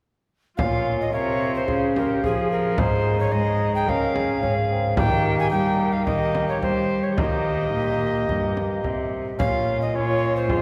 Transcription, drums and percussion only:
0.59 frame drum medium
1.68 frame drum medium
1.96 frame drum soft
2.24 frame drum soft
2.78 frame drum medium
3.88 frame drum soft
4.16 frame drum medium
4.43 frame drum soft
4.97 frame drum medium
6.07 frame drum medium
6.35 frame drum medium
6.62 frame drum soft
7.18 frame drum medium
8.29 frame drum soft
8.57 frame drum soft
8.84 frame drum soft
9.40 frame drum medium
10.50 frame drum medium

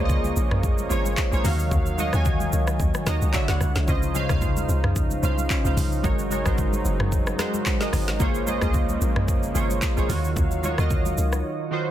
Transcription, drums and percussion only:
0.09 kick medium
0.09 low conga medium
0.09 shaker medium
0.24 high conga medium
0.24 shaker medium
0.36 shaker medium
0.51 cross-stick medium
0.51 mid tom loud
0.63 kick loud
0.63 shaker medium
0.78 high conga medium
0.78 shaker medium
0.90 high conga medium
0.90 shaker loud
1.05 high conga medium
1.05 shaker medium
1.17 kick medium
1.17 clap loud
1.17 shaker medium
1.32 shaker medium
1.45 open hi-hat medium
1.45 high conga medium
1.45 low conga medium
1.45 shaker medium
1.59 shaker medium
1.71 kick loud
1.71 low conga medium
1.71 shaker medium
1.86 shaker medium
1.98 high conga medium
1.98 shaker loud
2.13 cross-stick loud
2.13 high conga medium
2.13 shaker medium
2.25 kick medium
2.25 low conga medium
2.25 shaker medium
2.40 high conga medium
2.40 shaker medium
2.53 shaker medium
2.67 cross-stick loud
2.67 shaker medium
2.80 kick loud
2.80 shaker medium
2.94 cross-stick medium
2.94 high conga medium
2.94 shaker medium
3.07 cross-stick loud
3.07 snare medium
3.07 high conga medium
3.07 shaker loud
3.21 high conga medium
3.21 shaker medium
3.34 kick medium
3.34 clap loud
3.34 shaker medium
3.48 snare medium
3.48 shaker medium
3.61 cross-stick medium
3.61 high conga medium
3.61 low conga medium
3.61 shaker medium
3.76 snare medium
3.76 shaker medium
3.88 kick loud
3.88 low conga medium
3.88 shaker medium
4.03 shaker medium
4.15 high conga medium
4.15 shaker loud
4.29 kick medium
4.29 cross-stick loud
4.29 high conga medium
4.29 shaker medium
4.42 kick medium
4.42 low conga medium
4.42 shaker medium
4.57 high conga medium
4.57 shaker medium
4.69 shaker medium
4.84 cross-stick loud
4.84 mid tom loud
4.96 kick loud
4.96 shaker medium
5.11 high conga medium
5.11 shaker medium
5.23 high conga medium
5.23 shaker loud
5.38 high conga medium
5.38 shaker medium
5.50 kick medium
5.50 clap loud
5.50 shaker medium
5.65 shaker medium
5.77 open hi-hat medium
5.77 high conga medium
5.77 low conga medium
5.77 shaker medium
5.92 shaker medium
6.04 kick loud
6.04 low conga medium
6.04 shaker medium
6.19 shaker medium
6.31 high conga medium
6.31 shaker medium
6.46 kick loud
6.46 cross-stick loud
6.46 high conga medium
6.46 shaker medium
6.58 kick medium
6.58 low conga medium
6.58 shaker medium
6.73 high conga medium
6.73 shaker medium
6.85 shaker medium
7.00 cross-stick loud
7.00 mid tom loud
7.12 kick medium
7.12 shaker medium
7.27 cross-stick loud
7.27 high conga medium
7.27 shaker medium
7.39 cross-stick loud
7.39 snare medium
7.39 high conga medium
7.39 shaker loud
7.54 high conga medium
7.54 shaker medium
7.66 kick medium
7.66 clap loud
7.66 shaker medium
7.81 snare medium
7.81 shaker medium
7.93 cross-stick medium
7.93 open hi-hat medium
7.93 high conga medium
7.93 low conga medium
7.93 shaker medium
8.08 snare medium
8.08 shaker medium
8.20 kick loud
8.20 low conga medium
8.20 shaker medium
8.35 shaker medium
8.47 high conga medium
8.47 shaker loud
8.62 kick loud
8.62 cross-stick loud
8.62 high conga medium
8.62 shaker medium
8.74 kick medium
8.74 low conga medium
8.74 shaker medium
8.89 high conga medium
8.89 shaker medium
9.01 shaker medium
9.16 cross-stick loud
9.16 mid tom loud
9.28 kick loud
9.28 shaker medium
9.43 high conga medium
9.43 shaker medium
9.55 high conga medium
9.55 shaker loud
9.70 high conga medium
9.70 shaker medium
9.82 kick medium
9.82 clap loud
9.82 shaker medium
9.97 shaker medium
10.09 open hi-hat medium
10.09 high conga medium
10.09 low conga medium
10.09 shaker medium
10.24 shaker medium
10.36 kick loud
10.36 low conga medium
10.36 shaker medium
10.51 shaker medium
10.64 high conga medium
10.64 shaker loud
10.78 cross-stick loud
10.78 high conga medium
10.78 shaker medium
10.90 kick medium
10.90 low conga medium
10.90 shaker medium
11.05 high conga medium
11.05 shaker medium
11.18 shaker medium
11.33 cross-stick medium
11.33 shaker medium

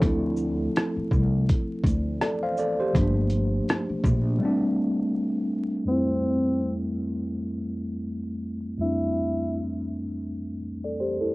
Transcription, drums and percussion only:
0.02 kick loud
0.02 closed hi-hat medium
0.37 shaker soft
0.76 cross-stick loud
0.76 closed hi-hat medium
1.11 kick medium
1.11 shaker soft
1.49 kick medium
1.49 closed hi-hat medium
1.84 kick medium
1.84 closed hi-hat soft
1.84 shaker soft
2.21 cross-stick loud
2.21 closed hi-hat medium
2.57 shaker soft
2.95 kick loud
2.95 closed hi-hat medium
3.30 closed hi-hat soft
3.30 shaker soft
3.69 cross-stick loud
3.69 closed hi-hat medium
4.04 kick medium
4.04 shaker soft

